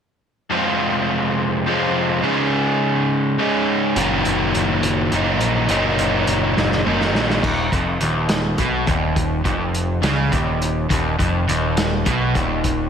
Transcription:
0.50 1.64 F2 medium
0.50 1.64 C3 medium
0.50 1.65 F3 medium
0.50 1.65 G#3 medium
0.50 1.65 C4 medium
0.50 1.65 F4 medium
1.66 2.22 F2 medium
1.66 2.22 C3 medium
1.66 2.22 F3 medium
1.66 2.22 G#3 medium
1.66 2.23 C4 medium
1.66 2.23 F4 medium
2.23 3.37 C#3 medium
2.23 3.37 G#3 medium
2.23 3.38 C#4 medium
2.23 3.40 D#4 medium
2.23 3.38 G#4 medium
3.38 3.95 C#3 medium
3.38 3.95 G#3 medium
3.38 3.95 C#4 medium
3.38 3.98 D#4 medium
3.38 3.96 G#4 medium
3.96 4.24 F#1 medium
3.96 5.10 D#2 medium
3.96 5.11 A#2 medium
3.96 5.11 D#3 medium
3.96 5.13 F#3 medium
3.96 5.14 A#3 medium
3.96 5.14 D#4 medium
3.96 closed hi-hat medium
4.25 4.53 F#1 medium
4.25 closed hi-hat soft
4.55 4.82 F#1 medium
4.55 closed hi-hat soft
4.83 5.11 F#1 medium
4.83 closed hi-hat medium
5.12 5.41 F#1 medium
5.12 5.68 D#2 medium
5.12 5.68 A#2 medium
5.12 5.69 D#3 medium
5.12 5.70 F#3 medium
5.12 5.70 A#3 medium
5.12 5.71 D#4 medium
5.12 closed hi-hat medium
5.41 5.68 A#1 medium
5.41 closed hi-hat medium
5.69 5.97 F#1 medium
5.69 6.83 D#2 medium
5.69 6.83 A#2 medium
5.69 6.84 D#3 medium
5.69 6.84 F#3 medium
5.69 6.84 A#3 medium
5.69 6.84 D#4 medium
5.69 closed hi-hat medium
5.99 6.26 F#1 medium
5.99 closed hi-hat soft
6.27 6.55 F#1 medium
6.27 closed hi-hat medium
6.57 6.84 F#1 medium
6.57 snare soft
6.72 snare soft
6.85 7.15 F#1 medium
6.85 7.41 D#2 medium
6.85 7.42 A#2 medium
6.85 7.42 D#3 medium
6.85 7.42 F#3 medium
6.85 7.42 A#3 medium
6.85 7.43 D#4 medium
7.01 snare soft
7.15 7.42 A#1 medium
7.15 snare medium
7.30 snare medium
7.43 7.70 D#1 medium
7.43 7.71 D#2 loud
7.43 kick medium
7.43 crash medium
7.72 7.99 F1 medium
7.72 8.00 F2 medium
7.72 kick medium
7.72 closed hi-hat soft
8.01 8.55 D#1 medium
8.01 8.58 D#2 medium
8.01 closed hi-hat soft
8.29 snare loud
8.29 closed hi-hat medium
8.58 8.85 B1 medium
8.58 8.87 B2 medium
8.58 kick medium
8.58 closed hi-hat medium
8.86 9.41 D#1 medium
8.86 9.44 D#2 medium
8.86 kick medium
8.86 closed hi-hat medium
9.16 kick medium
9.16 closed hi-hat medium
9.44 10.00 F1 medium
9.44 10.02 F2 medium
9.44 kick medium
9.44 closed hi-hat soft
9.74 closed hi-hat medium
10.02 10.30 C#2 medium
10.02 10.31 C#3 medium
10.02 snare medium
10.02 closed hi-hat medium
10.32 10.86 D#1 medium
10.32 10.88 D#2 medium
10.32 kick medium
10.32 closed hi-hat medium
10.62 closed hi-hat medium
10.89 11.17 D#1 medium
10.89 11.18 D#2 loud
10.89 kick medium
10.89 closed hi-hat medium
11.19 11.46 F1 medium
11.19 11.47 F2 medium
11.19 kick medium
11.19 closed hi-hat medium
11.47 12.03 D#1 medium
11.47 12.05 D#2 medium
11.47 closed hi-hat medium
11.77 snare loud
11.77 closed hi-hat medium
12.05 12.33 B1 medium
12.05 12.34 B2 medium
12.05 kick medium
12.05 closed hi-hat medium
12.34 12.89 D#1 medium
12.34 12.89 D#2 medium
12.34 kick medium
12.34 closed hi-hat medium
12.64 kick medium
12.64 closed hi-hat medium

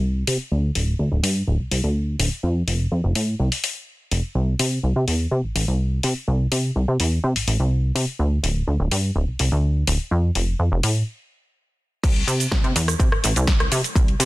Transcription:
0.00 0.24 C2 medium
0.27 0.37 C3 medium
0.27 open hi-hat medium
0.52 0.71 D2 medium
0.75 0.95 D1 medium
0.75 open hi-hat loud
0.99 1.09 D2 medium
1.12 1.21 D1 medium
1.23 1.43 G2 medium
1.23 open hi-hat loud
1.47 1.57 D1 medium
1.60 1.69 C2 soft
1.71 1.81 C2 medium
1.71 open hi-hat loud
1.84 2.16 D2 medium
2.19 2.29 D1 medium
2.19 open hi-hat loud
2.43 2.63 F2 loud
2.67 2.87 F1 medium
2.67 open hi-hat loud
2.92 3.01 F2 medium
3.04 3.13 F1 medium
3.15 3.35 A2 medium
3.15 open hi-hat loud
3.39 3.49 C2 medium
3.52 open hi-hat medium
3.64 open hi-hat medium
4.12 4.21 F1 medium
4.12 open hi-hat medium
4.35 4.55 C2 medium
4.59 4.79 C3 medium
4.59 open hi-hat loud
4.83 4.93 C2 medium
4.96 5.05 C3 medium
5.07 5.27 E2 medium
5.07 open hi-hat medium
5.31 5.41 C3 medium
5.44 5.53 A1 soft
5.55 5.65 A1 medium
5.55 open hi-hat medium
5.68 6.00 C2 medium
6.03 6.13 C3 medium
6.03 open hi-hat medium
6.28 6.47 C2 medium
6.52 6.71 C3 medium
6.52 open hi-hat loud
6.76 6.86 C2 medium
6.88 6.97 C3 medium
7.00 7.19 E2 medium
7.00 open hi-hat medium
7.24 7.33 C3 medium
7.36 7.45 A1 soft
7.36 open hi-hat medium
7.47 7.57 A1 medium
7.47 open hi-hat medium
7.60 7.92 C2 medium
7.95 8.05 C3 medium
7.95 open hi-hat medium
8.19 8.39 D2 medium
8.43 8.63 D1 medium
8.43 open hi-hat loud
8.68 8.77 D2 medium
8.80 8.89 D1 medium
8.91 9.11 G2 medium
8.91 open hi-hat medium
9.16 9.25 D1 medium
9.28 9.37 C2 soft
9.39 9.49 C2 medium
9.39 open hi-hat medium
9.52 9.84 D2 medium
9.87 9.97 D1 medium
9.87 open hi-hat medium
10.11 10.31 F2 medium
10.35 10.55 F1 medium
10.35 open hi-hat loud
10.59 10.69 F2 medium
10.72 10.81 F1 medium
10.83 11.03 A2 medium
10.83 open hi-hat medium
12.04 12.23 C2 loud
12.04 kick loud
12.04 closed hi-hat medium
12.04 crash loud
12.04 shaker soft
12.16 closed hi-hat soft
12.27 12.47 C3 medium
12.27 open hi-hat loud
12.27 shaker medium
12.40 closed hi-hat medium
12.40 shaker soft
12.52 12.61 C2 medium
12.52 kick loud
12.52 snare loud
12.52 closed hi-hat medium
12.52 shaker soft
12.64 12.73 C3 medium
12.64 closed hi-hat soft
12.76 12.95 E2 medium
12.76 open hi-hat loud
12.76 shaker medium
12.88 cross-stick medium
12.88 closed hi-hat medium
12.88 shaker soft
13.00 13.09 C3 loud
13.00 kick loud
13.00 closed hi-hat medium
13.00 shaker soft
13.12 13.21 A1 soft
13.12 cross-stick medium
13.24 13.34 A1 medium
13.24 open hi-hat loud
13.24 shaker medium
13.36 13.68 C2 medium
13.36 closed hi-hat medium
13.36 shaker soft
13.47 kick loud
13.47 snare loud
13.47 closed hi-hat medium
13.47 shaker soft
13.60 cross-stick medium
13.60 closed hi-hat soft
13.72 13.82 C3 loud
13.72 open hi-hat loud
13.72 shaker medium
13.84 closed hi-hat medium
13.84 shaker soft
13.95 14.15 C2 loud
13.95 kick loud
13.95 closed hi-hat medium
13.95 shaker soft
14.08 closed hi-hat soft
14.20 14.25 C3 medium
14.20 open hi-hat loud
14.20 shaker medium

